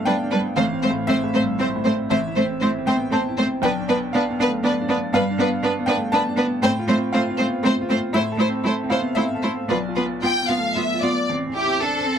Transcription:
Already playing: upright piano G2 A3 B3 D4 E5 F5
0.05 cello G3, upright piano B3 G5, viola D4, violin section B4
0.23 upright piano D4
0.31 cello G3, viola D4, violin section B4
0.40 upright piano B3
0.56 upright piano A1 F5, cello A3, viola C4, violin section C5
0.73 upright piano C4
0.82 cello A3, viola C4, violin section C5
0.90 upright piano A2
1.07 cello A3, upright piano C4 E5, viola C4, violin section C5
1.24 upright piano A2
1.33 cello A3, viola C4, violin section C5
1.41 upright piano G2
1.59 cello A3, upright piano C4 C5, viola C4, violin section C5
1.76 upright piano A2
1.85 cello A3, viola C4, violin section C5
1.93 upright piano C4
2.10 upright piano A1 E5, cello A3, viola C4, violin section C5
2.28 upright piano E4
2.36 cello A3, viola C4, violin section C5
2.44 upright piano C4
2.61 cello A3, viola C4, upright piano E4, violin section C5
2.78 upright piano C4
2.86 cello A3, viola C4, violin section C5, upright piano G5
2.95 upright piano B3
3.11 cello A3, viola C4, upright piano C4 A5, violin section C5
3.29 upright piano E4
3.38 cello A3, viola C4, violin section C5
3.46 upright piano C4
3.62 upright piano B1 G5, cello B3, viola D4, violin section B4
3.80 upright piano D4
3.88 cello B3, viola D4, violin section B4
3.97 upright piano B3
4.13 cello B3, upright piano D4 F5, viola D4, violin section B4
4.30 upright piano B3
4.39 cello B3, viola D4, violin section B4
4.47 upright piano A3
4.63 cello B3, upright piano B3 D5, viola D4, violin section B4
4.82 upright piano D4
4.89 cello B3, viola D4, violin section B4
4.98 upright piano B3
5.13 upright piano G2 F5, cello B3, viola D4, violin section B4
5.31 upright piano D4
5.38 cello B3, viola D4, violin section B4
5.47 upright piano B3
5.63 cello B3, viola D4, upright piano D4, violin section B4
5.79 upright piano B3
5.86 cello B3, viola D4, violin section B4, upright piano G5
5.96 upright piano A3
6.12 cello B3, upright piano B3 A5, viola D4, violin section B4
6.29 upright piano D4
6.36 cello B3, viola D4, violin section B4
6.46 upright piano B3
6.62 upright piano A2 G5, cello A3, viola C4, violin section C5
6.79 upright piano F4
6.88 cello A3, viola C4, violin section C5
6.97 upright piano C4
7.13 cello A3, viola C4, upright piano F4 F5, violin section C5
7.31 upright piano C4
7.38 cello A3, viola C4, violin section C5
7.48 upright piano B3
7.63 cello A3, viola C4, upright piano C4 C5, violin section C5
7.81 upright piano F4
7.89 cello A3, viola C4, violin section C5
7.98 upright piano C4
8.13 upright piano A2 E5, cello A3, viola E4, violin section C5
8.32 upright piano A4
8.37 cello A3, viola E4, violin section C5
8.49 upright piano C4
8.64 cello A3, viola E4, upright piano A4, violin section C5
8.84 upright piano C4
8.89 cello A3, viola E4, violin section C5, upright piano F5
9.00 upright piano B3
9.15 cello A3, upright piano C4 E5, viola E4, violin section C5
9.35 upright piano A4
9.42 cello A3, viola E4, violin section C5
9.53 upright piano C4
9.69 upright piano B1 D5, cello B3, viola F4, violin section B4
9.89 upright piano F4
9.95 cello B3, viola F4, violin section B4
10.06 upright piano B3
10.22 cello B3, viola F4, upright piano F4, violin section G5
10.43 upright piano B3
10.48 cello B3, viola F4, violin section F5
10.58 upright piano A3
10.75 cello B3, upright piano B3, viola F4, violin section E5
10.94 upright piano F4
11.02 cello B3, viola F4, violin section D5
11.12 upright piano B3
11.29 upright piano A1, cello C4
11.47 upright piano E2
11.54 cello E4, violin section G4
11.65 upright piano C4
11.81 cello D4, violin section A4, upright piano A4
11.99 upright piano C5
12.06 cello C4

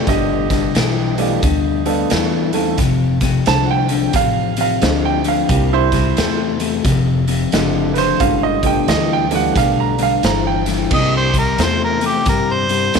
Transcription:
Already playing: grand piano A3 B3 F4 G4 D5
0.07 upright bass G1, clean electric guitar G2 D3, upright piano G4 D#5, kick, snare, closed hi-hat
0.50 clean electric guitar G2 D3, kick, snare, closed hi-hat
0.75 upright bass B1, clean electric guitar G2 E3, snare, closed hi-hat
1.18 clean electric guitar G2 E3, grand piano A3 B3 G4 D5 F5, closed hi-hat
1.43 upright bass D2, clean electric guitar G2 D3, kick, closed hi-hat
1.86 clean electric guitar G2 D3, grand piano A3 B3 A4 D5 F5, closed hi-hat
2.10 upright bass E2, clean electric guitar G2 E3, snare, closed hi-hat
2.53 clean electric guitar G2 E3, grand piano A3 C4 D#4 A4 F5, closed hi-hat
2.78 upright bass F1, clean electric guitar F2 C3, kick, snare, closed hi-hat
3.21 clean electric guitar F2 C3, kick, snare, closed hi-hat
3.46 upright bass C2, clean electric guitar F2 D3, upright piano A5, snare, closed hi-hat
3.66 upright piano F#5
3.71 upright piano G5
3.89 clean electric guitar F2 D3, closed hi-hat
4.13 upright bass A1, clean electric guitar F2 C3, upright piano F5, kick, closed hi-hat
4.57 clean electric guitar F2 C3, closed hi-hat
4.61 upright piano F5
4.81 upright bass D2, clean electric guitar F2 D3, grand piano A3 C4 F4 G4 D#5, snare, closed hi-hat
5.05 upright piano G5
5.24 clean electric guitar F2 D3, closed hi-hat
5.28 upright piano F5
5.49 upright bass C2, clean electric guitar C3 G3, grand piano A#3 C4 D4 E4 G4, kick, closed hi-hat
5.73 upright piano E4 C5
5.92 clean electric guitar C3 G3, kick, snare, closed hi-hat
6.17 upright bass E2, clean electric guitar C3 A3, snare, closed hi-hat
6.60 clean electric guitar C3 A3, closed hi-hat
6.84 upright bass F1, clean electric guitar F2 C3, kick, snare, closed hi-hat
7.28 clean electric guitar F2 C3, closed hi-hat
7.52 upright bass F#1, clean electric guitar F2 D3, grand piano A3 C4 F4 G4 D#5, snare, closed hi-hat
7.94 clean electric guitar F2 D3, upright piano B4, snare, closed hi-hat
7.98 upright piano C5
8.20 upright bass G1, clean electric guitar G2 D3, grand piano G#3 A#3 C#4 E4 F#4, upright piano F5, kick, closed hi-hat
8.43 upright piano D#5
8.63 clean electric guitar G2 D3, grand piano A3 B3 D4 F4 G4, upright piano G5, kick, closed hi-hat
8.88 upright bass D2, clean electric guitar G2 E3, upright piano D#5, snare, closed hi-hat
9.13 upright piano G5
9.31 clean electric guitar G2 E3, grand piano A3 B3 D4 G4 F5, closed hi-hat
9.36 upright piano F#5
9.56 upright bass B1, clean electric guitar G2 D3, upright piano F5, kick, snare, closed hi-hat
9.80 upright piano A#5
9.98 clean electric guitar G2 D3, closed hi-hat
10.03 upright piano F5
10.23 upright bass G1, clean electric guitar G2 E3, upright piano A#5, snare, closed hi-hat
10.47 upright piano G5
10.66 clean electric guitar G2 E3, snare, closed hi-hat
10.90 upright bass C2, clean electric guitar C3 G3, grand piano A#3 C4 D4 E4 G4, harmonica D#5, kick, crash
11.17 harmonica C5
11.34 clean electric guitar C3 G3, kick, closed hi-hat
11.39 harmonica A#4
11.58 upright bass E2, clean electric guitar C3 A3, snare, closed hi-hat
11.63 harmonica C5
11.85 harmonica A#4
12.01 clean electric guitar C3 A3, closed hi-hat
12.06 harmonica G4
12.26 upright bass G2, clean electric guitar C3 G3, harmonica A#4, kick, snare, closed hi-hat
12.53 harmonica C5
12.69 clean electric guitar C3 G3, closed hi-hat
12.94 upright bass E2, clean electric guitar C3 A3, grand piano G3 C4 D4 E4 A4, snare, closed hi-hat

